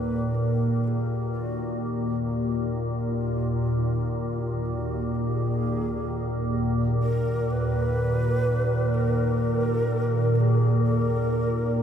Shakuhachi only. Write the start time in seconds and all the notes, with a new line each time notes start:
Already playing: B4
0.35 A#4
0.84 G#4 A#4
1.32 F4
1.44 F#4
2.27 F4
4.65 F#4
5.15 G4
5.31 G#4
7.02 A#4
7.51 B4
8.94 A#4
10.35 A#4
10.40 G#4
10.84 A4
10.98 A#4